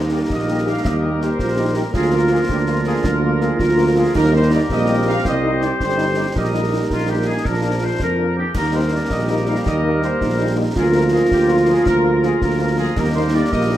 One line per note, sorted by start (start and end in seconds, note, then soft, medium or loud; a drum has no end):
0.00 0.22 D#2 medium
0.00 1.93 G3 medium
0.00 1.93 A#3 medium
0.00 0.88 D#4 medium
0.00 1.91 G4 medium
0.00 1.91 A#4 medium
0.12 0.18 A#3 soft
0.12 0.18 D#4 soft
0.12 0.18 G4 soft
0.12 0.21 D5 medium
0.30 0.76 A#1 medium
0.30 0.65 D#5 medium
0.30 concert bass drum medium
0.30 snare medium
0.49 0.55 A#3 soft
0.49 0.56 D#4 soft
0.49 0.56 G4 soft
0.66 0.73 A#3 soft
0.66 0.73 D#4 soft
0.66 0.73 G4 soft
0.66 0.86 F5 medium
0.85 1.31 D#2 medium
0.85 1.41 G4 medium
0.85 1.22 D#5 medium
0.85 concert bass drum medium
0.85 snare medium
1.03 1.10 A#3 medium
1.03 1.10 D#4 soft
1.03 1.10 G4 soft
1.21 1.28 A#3 soft
1.21 1.27 D#4 soft
1.21 1.28 G4 soft
1.21 1.77 C5 medium
1.21 snare soft
1.39 1.81 A#1 medium
1.39 1.49 F4 medium
1.39 concert bass drum medium
1.39 snare medium
1.58 1.65 A#3 medium
1.58 1.65 D#4 medium
1.58 1.75 D#4 medium
1.58 1.65 G4 medium
1.75 1.83 A#3 soft
1.75 1.83 D#4 soft
1.75 1.84 G4 medium
1.75 1.83 G4 medium
1.75 1.95 A#4 medium
1.94 2.41 D2 medium
1.94 4.15 F3 medium
1.94 4.11 A#3 medium
1.94 2.46 F4 medium
1.94 4.12 F4 medium
1.94 2.12 G#4 medium
1.94 4.12 A#4 medium
1.94 concert bass drum medium
1.94 snare medium
2.13 2.20 A#3 medium
2.13 2.20 F4 medium
2.13 2.30 A#4 medium
2.31 2.39 A#3 soft
2.31 2.38 F4 soft
2.31 2.40 G#4 medium
2.49 2.96 D2 medium
2.49 3.59 D4 medium
2.49 2.59 G4 medium
2.49 concert bass drum medium
2.49 snare medium
2.68 2.75 A#3 medium
2.68 2.76 F4 medium
2.68 2.75 F4 medium
2.86 2.93 A#3 medium
2.86 2.93 F4 medium
2.86 3.04 G#4 medium
3.04 3.51 D2 medium
3.04 3.41 A#4 medium
3.04 concert bass drum medium
3.04 snare medium
3.22 3.30 A#3 medium
3.22 3.29 F4 medium
3.40 3.47 A#3 medium
3.40 3.47 F4 medium
3.40 3.60 G#4 medium
3.40 snare soft
3.58 4.06 D2 medium
3.58 4.14 F4 medium
3.58 3.94 A#4 medium
3.58 concert bass drum medium
3.58 snare medium
3.77 3.84 A#3 medium
3.77 3.84 F4 medium
3.96 4.03 A#3 medium
3.96 4.03 F4 medium
3.96 4.15 G#4 medium
4.15 4.61 D#2 medium
4.15 4.67 G3 medium
4.15 4.67 A#3 medium
4.15 4.66 D#4 medium
4.15 6.31 G4 medium
4.15 5.21 A#4 medium
4.15 4.32 A#4 medium
4.15 concert bass drum medium
4.15 snare medium
4.15 crash soft
4.33 4.39 G3 medium
4.33 4.40 A#3 medium
4.33 4.40 D#4 medium
4.33 4.51 C5 medium
4.51 4.58 G3 medium
4.51 4.58 A#3 medium
4.51 4.58 D#4 medium
4.51 4.61 D5 medium
4.70 5.16 A#1 medium
4.70 5.22 G3 medium
4.70 5.22 A#3 medium
4.70 6.03 C4 medium
4.70 5.05 D#5 medium
4.70 concert bass drum medium
4.70 snare medium
4.89 4.96 G3 medium
4.89 4.96 A#3 medium
4.89 4.96 D#4 medium
5.06 5.13 G3 medium
5.06 5.13 A#3 medium
5.06 5.13 D#4 medium
5.06 5.25 F5 medium
5.25 5.71 C2 medium
5.25 5.77 G3 medium
5.25 5.81 C4 medium
5.25 6.35 C5 medium
5.25 5.61 D#5 medium
5.25 concert bass drum medium
5.25 snare medium
5.43 5.50 G3 medium
5.43 5.50 C4 medium
5.43 5.50 D#4 medium
5.61 5.68 G3 soft
5.61 5.68 C4 soft
5.61 5.68 D#4 medium
5.61 5.71 D5 medium
5.61 snare soft
5.80 6.26 G1 medium
5.80 6.33 G3 medium
5.80 6.33 C4 soft
5.80 6.15 C5 medium
5.80 concert bass drum medium
5.80 snare medium
5.97 6.04 G3 soft
5.97 6.05 C4 medium
5.97 6.05 D#4 medium
6.17 6.24 G3 medium
6.17 6.24 C4 soft
6.17 6.24 D#4 soft
6.17 6.26 G4 medium
6.35 6.81 A#1 medium
6.35 7.42 G3 medium
6.35 8.25 A#3 soft
6.35 7.46 D#4 medium
6.35 6.84 G4 medium
6.35 7.97 A#4 medium
6.35 6.84 D#5 medium
6.35 concert bass drum medium
6.35 snare medium
6.53 6.60 G3 soft
6.53 6.60 A#3 soft
6.53 6.60 D#4 soft
6.72 6.78 G3 soft
6.72 6.79 A#3 soft
6.72 6.79 D#4 soft
6.90 7.36 A#1 medium
6.90 7.08 F4 medium
6.90 concert bass drum medium
6.90 snare medium
7.08 7.15 G3 soft
7.08 7.15 A#3 soft
7.08 7.16 D#4 soft
7.08 7.27 G4 medium
7.25 7.34 G3 soft
7.25 7.34 A#3 soft
7.25 7.34 D#4 soft
7.25 7.43 G#4 medium
7.45 7.92 A#1 medium
7.45 8.34 F3 soft
7.45 8.34 D4 soft
7.45 7.82 A#4 medium
7.45 concert bass drum medium
7.45 snare medium
7.63 7.70 F3 soft
7.63 7.70 A#3 soft
7.63 7.70 D4 soft
7.81 7.88 F3 soft
7.81 7.88 A#3 soft
7.81 7.88 D4 soft
7.81 8.01 C5 medium
8.00 8.46 F2 medium
8.00 8.35 A#4 medium
8.00 concert bass drum medium
8.00 snare medium
8.18 8.25 F3 soft
8.18 8.25 A#3 soft
8.18 8.25 D4 soft
8.37 8.44 F3 soft
8.37 8.44 A#3 soft
8.37 8.44 D4 soft
8.37 8.54 G4 medium
8.37 8.55 G#4 medium
8.55 9.02 D#2 medium
8.55 10.73 G3 medium
8.55 10.73 A#3 medium
8.55 10.60 G4 medium
8.55 10.60 A#4 medium
8.55 8.73 A#4 medium
8.55 concert bass drum medium
8.55 snare medium
8.55 crash soft
8.73 8.80 G3 soft
8.73 8.80 A#3 soft
8.73 8.80 D#4 medium
8.73 8.92 C5 medium
8.92 9.00 G3 soft
8.92 8.99 A#3 soft
8.92 8.99 D#4 soft
8.92 9.12 D5 medium
9.10 9.57 A#1 medium
9.10 9.67 C4 medium
9.10 9.45 D#5 medium
9.10 concert bass drum medium
9.10 snare medium
9.28 9.36 G3 soft
9.28 9.35 A#3 soft
9.28 9.36 D#4 medium
9.47 9.54 G3 soft
9.47 9.54 A#3 soft
9.47 9.54 D#4 medium
9.47 9.56 F5 medium
9.66 10.12 D#2 medium
9.66 10.19 A#3 soft
9.66 10.01 D#5 medium
9.66 concert bass drum medium
9.66 snare medium
9.84 9.91 G3 medium
9.84 9.90 A#3 soft
9.84 9.90 D#4 medium
10.01 10.08 G3 soft
10.01 10.08 A#3 medium
10.01 10.08 D#4 medium
10.01 10.55 C5 medium
10.01 snare soft
10.20 10.67 A#1 medium
10.20 10.28 D#4 medium
10.20 concert bass drum medium
10.20 snare medium
10.39 10.46 G3 soft
10.39 10.46 A#3 soft
10.39 10.58 D4 medium
10.39 10.46 D#4 medium
10.56 10.63 G3 soft
10.56 10.63 A#3 medium
10.56 10.64 D#4 medium
10.56 10.75 D#4 medium
10.56 10.77 A#4 medium
10.75 11.23 D2 medium
10.75 12.98 F3 medium
10.75 12.94 A#3 medium
10.75 12.93 F4 medium
10.75 12.94 F4 medium
10.75 10.85 G#4 medium
10.75 12.94 A#4 medium
10.75 concert bass drum medium
10.75 snare medium
10.93 11.00 F3 medium
10.93 11.00 A#3 medium
10.93 11.01 F4 soft
10.93 11.03 A#4 medium
11.12 11.19 F3 medium
11.12 11.19 A#3 medium
11.12 11.19 F4 soft
11.12 11.21 G#4 medium
11.31 11.78 D2 medium
11.31 11.49 G4 medium
11.31 concert bass drum medium
11.31 snare medium
11.48 11.56 F3 medium
11.48 11.55 A#3 medium
11.48 11.56 F4 medium
11.48 11.69 F4 medium
11.67 11.74 F3 medium
11.67 11.74 A#3 medium
11.67 11.74 F4 medium
11.67 11.88 G#4 medium
11.86 12.33 D2 medium
11.86 12.21 A#4 medium
11.86 concert bass drum medium
11.86 snare medium
12.03 12.10 F3 medium
12.03 12.10 A#3 medium
12.03 12.10 F4 medium
12.21 12.29 F3 medium
12.21 12.29 A#3 medium
12.21 12.29 F4 medium
12.21 12.41 G#4 medium
12.21 snare medium
12.42 12.88 D2 medium
12.42 12.77 A#4 medium
12.42 concert bass drum medium
12.42 snare medium
12.59 12.66 F3 medium
12.59 12.66 A#3 medium
12.59 12.66 F4 medium
12.77 12.85 F3 medium
12.77 12.85 A#3 medium
12.77 12.84 F4 medium
12.77 12.96 G#4 medium
12.96 13.43 D#2 medium
12.96 13.77 G3 medium
12.96 13.77 A#3 medium
12.96 13.49 D#4 medium
12.96 13.77 G4 medium
12.96 13.16 A#4 medium
12.96 13.77 A#4 medium
12.96 concert bass drum medium
12.96 snare medium
12.96 crash soft
13.14 13.22 G3 medium
13.14 13.22 A#3 medium
13.14 13.22 D#4 medium
13.14 13.32 C5 medium
13.34 13.41 G3 medium
13.34 13.41 A#3 medium
13.34 13.41 D#4 medium
13.34 13.51 D5 medium
13.52 13.77 A#1 medium
13.52 13.77 A#3 medium
13.52 13.77 D#5 medium
13.52 concert bass drum medium
13.52 snare medium
13.71 13.77 G3 medium
13.71 13.77 A#3 medium
13.71 13.77 D#4 medium